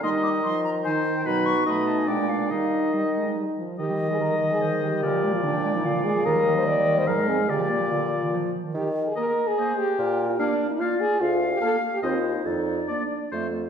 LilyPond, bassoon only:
\new Staff \with { instrumentName = "Bassoon" } { \clef bass \time 3/4 \key ees \major \tempo 4 = 145 ees2. | b,4 b,4 bes,4 | ees2~ ees8 r8 | ees2. |
bes,2. | ees,2 aes,4 | bes,2~ bes,8 r8 | ees4 r2 |
bes,4 r2 | \key bes \major d,4 r4 ees,4 | f,4 r4 f,4 | }